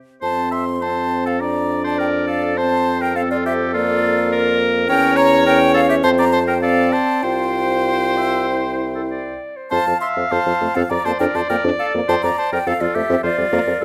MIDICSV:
0, 0, Header, 1, 6, 480
1, 0, Start_track
1, 0, Key_signature, -1, "major"
1, 0, Tempo, 590551
1, 180, Time_signature, 4, 2, 24, 8
1, 2573, Tempo, 576923
1, 5453, Tempo, 617284
1, 7853, Tempo, 593472
1, 9773, Tempo, 574713
1, 11242, End_track
2, 0, Start_track
2, 0, Title_t, "Flute"
2, 0, Program_c, 0, 73
2, 184, Note_on_c, 0, 81, 103
2, 425, Note_on_c, 0, 84, 97
2, 437, Note_off_c, 0, 81, 0
2, 669, Note_on_c, 0, 81, 101
2, 681, Note_off_c, 0, 84, 0
2, 1032, Note_on_c, 0, 77, 85
2, 1044, Note_off_c, 0, 81, 0
2, 1136, Note_off_c, 0, 77, 0
2, 1141, Note_on_c, 0, 82, 97
2, 1494, Note_off_c, 0, 82, 0
2, 1508, Note_on_c, 0, 81, 92
2, 1619, Note_off_c, 0, 81, 0
2, 1624, Note_on_c, 0, 79, 93
2, 1678, Note_off_c, 0, 79, 0
2, 1851, Note_on_c, 0, 77, 93
2, 2082, Note_off_c, 0, 77, 0
2, 2087, Note_on_c, 0, 81, 105
2, 2442, Note_off_c, 0, 81, 0
2, 2448, Note_on_c, 0, 79, 109
2, 2561, Note_off_c, 0, 79, 0
2, 2566, Note_on_c, 0, 77, 116
2, 2615, Note_off_c, 0, 77, 0
2, 2692, Note_on_c, 0, 74, 98
2, 2742, Note_off_c, 0, 74, 0
2, 2818, Note_on_c, 0, 76, 109
2, 2872, Note_off_c, 0, 76, 0
2, 3054, Note_on_c, 0, 74, 114
2, 3758, Note_off_c, 0, 74, 0
2, 4009, Note_on_c, 0, 79, 127
2, 4231, Note_off_c, 0, 79, 0
2, 4242, Note_on_c, 0, 82, 127
2, 4479, Note_off_c, 0, 82, 0
2, 4486, Note_on_c, 0, 79, 126
2, 4718, Note_off_c, 0, 79, 0
2, 4723, Note_on_c, 0, 77, 120
2, 4841, Note_off_c, 0, 77, 0
2, 4846, Note_on_c, 0, 76, 119
2, 4896, Note_off_c, 0, 76, 0
2, 4959, Note_on_c, 0, 81, 127
2, 5008, Note_off_c, 0, 81, 0
2, 5088, Note_on_c, 0, 82, 127
2, 5204, Note_on_c, 0, 81, 114
2, 5216, Note_off_c, 0, 82, 0
2, 5320, Note_off_c, 0, 81, 0
2, 5325, Note_on_c, 0, 79, 105
2, 5435, Note_off_c, 0, 79, 0
2, 5440, Note_on_c, 0, 77, 115
2, 5676, Note_off_c, 0, 77, 0
2, 5681, Note_on_c, 0, 81, 107
2, 5921, Note_on_c, 0, 79, 112
2, 5932, Note_off_c, 0, 81, 0
2, 7612, Note_off_c, 0, 79, 0
2, 7849, Note_on_c, 0, 81, 108
2, 8077, Note_off_c, 0, 81, 0
2, 8090, Note_on_c, 0, 84, 104
2, 8145, Note_off_c, 0, 84, 0
2, 8331, Note_on_c, 0, 81, 107
2, 8692, Note_on_c, 0, 77, 98
2, 8705, Note_off_c, 0, 81, 0
2, 8813, Note_on_c, 0, 82, 107
2, 8826, Note_off_c, 0, 77, 0
2, 8932, Note_off_c, 0, 82, 0
2, 8937, Note_on_c, 0, 81, 103
2, 8986, Note_off_c, 0, 81, 0
2, 9049, Note_on_c, 0, 79, 96
2, 9097, Note_off_c, 0, 79, 0
2, 9172, Note_on_c, 0, 81, 102
2, 9221, Note_off_c, 0, 81, 0
2, 9295, Note_on_c, 0, 79, 104
2, 9348, Note_off_c, 0, 79, 0
2, 9533, Note_on_c, 0, 77, 97
2, 9587, Note_off_c, 0, 77, 0
2, 9774, Note_on_c, 0, 81, 110
2, 9824, Note_off_c, 0, 81, 0
2, 9890, Note_on_c, 0, 82, 110
2, 10020, Note_on_c, 0, 81, 108
2, 10033, Note_off_c, 0, 82, 0
2, 10138, Note_off_c, 0, 81, 0
2, 10144, Note_on_c, 0, 79, 113
2, 10263, Note_on_c, 0, 77, 116
2, 10276, Note_off_c, 0, 79, 0
2, 10374, Note_on_c, 0, 74, 101
2, 10387, Note_off_c, 0, 77, 0
2, 10496, Note_on_c, 0, 76, 108
2, 10509, Note_off_c, 0, 74, 0
2, 10730, Note_off_c, 0, 76, 0
2, 10735, Note_on_c, 0, 74, 115
2, 11242, Note_off_c, 0, 74, 0
2, 11242, End_track
3, 0, Start_track
3, 0, Title_t, "Clarinet"
3, 0, Program_c, 1, 71
3, 1145, Note_on_c, 1, 74, 91
3, 2097, Note_on_c, 1, 72, 90
3, 2110, Note_off_c, 1, 74, 0
3, 2563, Note_off_c, 1, 72, 0
3, 2568, Note_on_c, 1, 69, 93
3, 3513, Note_off_c, 1, 69, 0
3, 3535, Note_on_c, 1, 70, 107
3, 4002, Note_off_c, 1, 70, 0
3, 4011, Note_on_c, 1, 73, 127
3, 4945, Note_off_c, 1, 73, 0
3, 4969, Note_on_c, 1, 72, 107
3, 5445, Note_off_c, 1, 72, 0
3, 5453, Note_on_c, 1, 74, 101
3, 5927, Note_on_c, 1, 72, 83
3, 5939, Note_off_c, 1, 74, 0
3, 6368, Note_off_c, 1, 72, 0
3, 6414, Note_on_c, 1, 72, 80
3, 6654, Note_on_c, 1, 76, 86
3, 6666, Note_off_c, 1, 72, 0
3, 6887, Note_off_c, 1, 76, 0
3, 6892, Note_on_c, 1, 72, 77
3, 7152, Note_off_c, 1, 72, 0
3, 7258, Note_on_c, 1, 69, 65
3, 7311, Note_off_c, 1, 69, 0
3, 7371, Note_on_c, 1, 74, 80
3, 7736, Note_on_c, 1, 72, 63
3, 7748, Note_off_c, 1, 74, 0
3, 7849, Note_off_c, 1, 72, 0
3, 7854, Note_on_c, 1, 77, 106
3, 8782, Note_off_c, 1, 77, 0
3, 8818, Note_on_c, 1, 74, 104
3, 10227, Note_off_c, 1, 74, 0
3, 10255, Note_on_c, 1, 69, 88
3, 10721, Note_off_c, 1, 69, 0
3, 10729, Note_on_c, 1, 72, 95
3, 10838, Note_off_c, 1, 72, 0
3, 10967, Note_on_c, 1, 70, 77
3, 11204, Note_off_c, 1, 70, 0
3, 11209, Note_on_c, 1, 69, 97
3, 11242, Note_off_c, 1, 69, 0
3, 11242, End_track
4, 0, Start_track
4, 0, Title_t, "Oboe"
4, 0, Program_c, 2, 68
4, 179, Note_on_c, 2, 72, 85
4, 406, Note_off_c, 2, 72, 0
4, 419, Note_on_c, 2, 76, 83
4, 529, Note_off_c, 2, 76, 0
4, 663, Note_on_c, 2, 72, 87
4, 1019, Note_off_c, 2, 72, 0
4, 1024, Note_on_c, 2, 69, 78
4, 1145, Note_on_c, 2, 74, 86
4, 1157, Note_off_c, 2, 69, 0
4, 1494, Note_off_c, 2, 74, 0
4, 1499, Note_on_c, 2, 72, 82
4, 1614, Note_on_c, 2, 70, 87
4, 1626, Note_off_c, 2, 72, 0
4, 1847, Note_off_c, 2, 70, 0
4, 1852, Note_on_c, 2, 69, 90
4, 2093, Note_on_c, 2, 72, 108
4, 2105, Note_off_c, 2, 69, 0
4, 2452, Note_on_c, 2, 70, 87
4, 2464, Note_off_c, 2, 72, 0
4, 2571, Note_on_c, 2, 69, 94
4, 2584, Note_off_c, 2, 70, 0
4, 2688, Note_off_c, 2, 69, 0
4, 2693, Note_on_c, 2, 65, 86
4, 2812, Note_off_c, 2, 65, 0
4, 2818, Note_on_c, 2, 67, 93
4, 3049, Note_off_c, 2, 67, 0
4, 3054, Note_on_c, 2, 65, 101
4, 3757, Note_off_c, 2, 65, 0
4, 4007, Note_on_c, 2, 70, 127
4, 4241, Note_on_c, 2, 73, 124
4, 4253, Note_off_c, 2, 70, 0
4, 4480, Note_off_c, 2, 73, 0
4, 4485, Note_on_c, 2, 70, 119
4, 4592, Note_off_c, 2, 70, 0
4, 4719, Note_on_c, 2, 69, 107
4, 4774, Note_off_c, 2, 69, 0
4, 4840, Note_on_c, 2, 67, 93
4, 4895, Note_off_c, 2, 67, 0
4, 4964, Note_on_c, 2, 72, 127
4, 5018, Note_off_c, 2, 72, 0
4, 5089, Note_on_c, 2, 74, 110
4, 5143, Note_off_c, 2, 74, 0
4, 5205, Note_on_c, 2, 72, 110
4, 5260, Note_off_c, 2, 72, 0
4, 5328, Note_on_c, 2, 70, 87
4, 5383, Note_off_c, 2, 70, 0
4, 5454, Note_on_c, 2, 69, 102
4, 5688, Note_on_c, 2, 72, 99
4, 5700, Note_off_c, 2, 69, 0
4, 5918, Note_off_c, 2, 72, 0
4, 5923, Note_on_c, 2, 72, 108
4, 7583, Note_off_c, 2, 72, 0
4, 7851, Note_on_c, 2, 72, 97
4, 7961, Note_off_c, 2, 72, 0
4, 8099, Note_on_c, 2, 76, 102
4, 8342, Note_on_c, 2, 72, 98
4, 8354, Note_off_c, 2, 76, 0
4, 8697, Note_off_c, 2, 72, 0
4, 8701, Note_on_c, 2, 69, 84
4, 8754, Note_off_c, 2, 69, 0
4, 8817, Note_on_c, 2, 74, 103
4, 8941, Note_on_c, 2, 72, 92
4, 8953, Note_off_c, 2, 74, 0
4, 9053, Note_off_c, 2, 72, 0
4, 9058, Note_on_c, 2, 70, 91
4, 9182, Note_on_c, 2, 72, 84
4, 9194, Note_off_c, 2, 70, 0
4, 9292, Note_off_c, 2, 72, 0
4, 9296, Note_on_c, 2, 70, 94
4, 9404, Note_off_c, 2, 70, 0
4, 9538, Note_on_c, 2, 69, 94
4, 9645, Note_off_c, 2, 69, 0
4, 9774, Note_on_c, 2, 72, 114
4, 9893, Note_off_c, 2, 72, 0
4, 9899, Note_on_c, 2, 74, 98
4, 10016, Note_off_c, 2, 74, 0
4, 10023, Note_on_c, 2, 72, 94
4, 10137, Note_off_c, 2, 72, 0
4, 10141, Note_on_c, 2, 70, 87
4, 10194, Note_off_c, 2, 70, 0
4, 10262, Note_on_c, 2, 69, 94
4, 10314, Note_off_c, 2, 69, 0
4, 10378, Note_on_c, 2, 65, 87
4, 10497, Note_on_c, 2, 67, 99
4, 10509, Note_off_c, 2, 65, 0
4, 10724, Note_off_c, 2, 67, 0
4, 10729, Note_on_c, 2, 65, 96
4, 11242, Note_off_c, 2, 65, 0
4, 11242, End_track
5, 0, Start_track
5, 0, Title_t, "French horn"
5, 0, Program_c, 3, 60
5, 180, Note_on_c, 3, 60, 63
5, 634, Note_off_c, 3, 60, 0
5, 666, Note_on_c, 3, 60, 67
5, 1144, Note_on_c, 3, 62, 76
5, 1156, Note_off_c, 3, 60, 0
5, 2095, Note_off_c, 3, 62, 0
5, 2099, Note_on_c, 3, 60, 78
5, 2564, Note_off_c, 3, 60, 0
5, 2572, Note_on_c, 3, 60, 86
5, 3058, Note_on_c, 3, 58, 93
5, 3070, Note_off_c, 3, 60, 0
5, 4003, Note_off_c, 3, 58, 0
5, 4008, Note_on_c, 3, 61, 100
5, 4476, Note_off_c, 3, 61, 0
5, 4486, Note_on_c, 3, 61, 95
5, 4962, Note_on_c, 3, 60, 98
5, 4974, Note_off_c, 3, 61, 0
5, 5279, Note_off_c, 3, 60, 0
5, 5449, Note_on_c, 3, 60, 90
5, 5925, Note_on_c, 3, 65, 76
5, 5937, Note_off_c, 3, 60, 0
5, 6892, Note_on_c, 3, 64, 65
5, 6904, Note_off_c, 3, 65, 0
5, 7615, Note_off_c, 3, 64, 0
5, 7851, Note_on_c, 3, 60, 76
5, 7906, Note_off_c, 3, 60, 0
5, 7975, Note_on_c, 3, 53, 68
5, 8030, Note_off_c, 3, 53, 0
5, 8218, Note_on_c, 3, 53, 62
5, 8271, Note_off_c, 3, 53, 0
5, 8336, Note_on_c, 3, 60, 77
5, 8390, Note_off_c, 3, 60, 0
5, 8456, Note_on_c, 3, 53, 67
5, 8509, Note_off_c, 3, 53, 0
5, 8577, Note_on_c, 3, 57, 77
5, 8631, Note_off_c, 3, 57, 0
5, 8693, Note_on_c, 3, 60, 93
5, 8747, Note_off_c, 3, 60, 0
5, 8814, Note_on_c, 3, 53, 69
5, 8869, Note_off_c, 3, 53, 0
5, 8937, Note_on_c, 3, 58, 69
5, 8991, Note_off_c, 3, 58, 0
5, 9057, Note_on_c, 3, 62, 94
5, 9110, Note_off_c, 3, 62, 0
5, 9173, Note_on_c, 3, 53, 67
5, 9227, Note_off_c, 3, 53, 0
5, 9297, Note_on_c, 3, 58, 82
5, 9350, Note_off_c, 3, 58, 0
5, 9412, Note_on_c, 3, 62, 98
5, 9467, Note_off_c, 3, 62, 0
5, 9657, Note_on_c, 3, 58, 82
5, 9710, Note_off_c, 3, 58, 0
5, 9773, Note_on_c, 3, 60, 91
5, 9828, Note_off_c, 3, 60, 0
5, 9900, Note_on_c, 3, 53, 64
5, 9953, Note_off_c, 3, 53, 0
5, 10138, Note_on_c, 3, 53, 65
5, 10191, Note_off_c, 3, 53, 0
5, 10256, Note_on_c, 3, 60, 84
5, 10309, Note_off_c, 3, 60, 0
5, 10379, Note_on_c, 3, 53, 68
5, 10431, Note_off_c, 3, 53, 0
5, 10498, Note_on_c, 3, 57, 65
5, 10550, Note_off_c, 3, 57, 0
5, 10613, Note_on_c, 3, 60, 87
5, 10667, Note_off_c, 3, 60, 0
5, 10732, Note_on_c, 3, 53, 75
5, 10786, Note_off_c, 3, 53, 0
5, 10857, Note_on_c, 3, 55, 72
5, 10910, Note_off_c, 3, 55, 0
5, 10977, Note_on_c, 3, 58, 110
5, 11030, Note_off_c, 3, 58, 0
5, 11095, Note_on_c, 3, 53, 75
5, 11149, Note_off_c, 3, 53, 0
5, 11242, End_track
6, 0, Start_track
6, 0, Title_t, "Bassoon"
6, 0, Program_c, 4, 70
6, 180, Note_on_c, 4, 41, 74
6, 3978, Note_off_c, 4, 41, 0
6, 4014, Note_on_c, 4, 40, 109
6, 4947, Note_off_c, 4, 40, 0
6, 4965, Note_on_c, 4, 41, 105
6, 5686, Note_off_c, 4, 41, 0
6, 5925, Note_on_c, 4, 36, 84
6, 7583, Note_off_c, 4, 36, 0
6, 7856, Note_on_c, 4, 41, 89
6, 7911, Note_off_c, 4, 41, 0
6, 7978, Note_on_c, 4, 41, 75
6, 8032, Note_off_c, 4, 41, 0
6, 8218, Note_on_c, 4, 41, 67
6, 8271, Note_off_c, 4, 41, 0
6, 8339, Note_on_c, 4, 41, 92
6, 8392, Note_off_c, 4, 41, 0
6, 8456, Note_on_c, 4, 41, 71
6, 8509, Note_off_c, 4, 41, 0
6, 8578, Note_on_c, 4, 41, 72
6, 8631, Note_off_c, 4, 41, 0
6, 8698, Note_on_c, 4, 41, 100
6, 8751, Note_off_c, 4, 41, 0
6, 8816, Note_on_c, 4, 41, 69
6, 8870, Note_off_c, 4, 41, 0
6, 8934, Note_on_c, 4, 41, 70
6, 8988, Note_off_c, 4, 41, 0
6, 9056, Note_on_c, 4, 41, 97
6, 9109, Note_off_c, 4, 41, 0
6, 9172, Note_on_c, 4, 41, 68
6, 9226, Note_off_c, 4, 41, 0
6, 9293, Note_on_c, 4, 41, 66
6, 9346, Note_off_c, 4, 41, 0
6, 9411, Note_on_c, 4, 41, 88
6, 9465, Note_off_c, 4, 41, 0
6, 9652, Note_on_c, 4, 41, 69
6, 9706, Note_off_c, 4, 41, 0
6, 9771, Note_on_c, 4, 41, 98
6, 9826, Note_off_c, 4, 41, 0
6, 9893, Note_on_c, 4, 41, 74
6, 9948, Note_off_c, 4, 41, 0
6, 10132, Note_on_c, 4, 41, 74
6, 10187, Note_off_c, 4, 41, 0
6, 10252, Note_on_c, 4, 41, 97
6, 10306, Note_off_c, 4, 41, 0
6, 10372, Note_on_c, 4, 41, 71
6, 10426, Note_off_c, 4, 41, 0
6, 10493, Note_on_c, 4, 41, 74
6, 10546, Note_off_c, 4, 41, 0
6, 10611, Note_on_c, 4, 41, 109
6, 10665, Note_off_c, 4, 41, 0
6, 10730, Note_on_c, 4, 41, 76
6, 10784, Note_off_c, 4, 41, 0
6, 10850, Note_on_c, 4, 41, 74
6, 10904, Note_off_c, 4, 41, 0
6, 10969, Note_on_c, 4, 41, 106
6, 11024, Note_off_c, 4, 41, 0
6, 11093, Note_on_c, 4, 41, 74
6, 11147, Note_off_c, 4, 41, 0
6, 11215, Note_on_c, 4, 41, 76
6, 11242, Note_off_c, 4, 41, 0
6, 11242, End_track
0, 0, End_of_file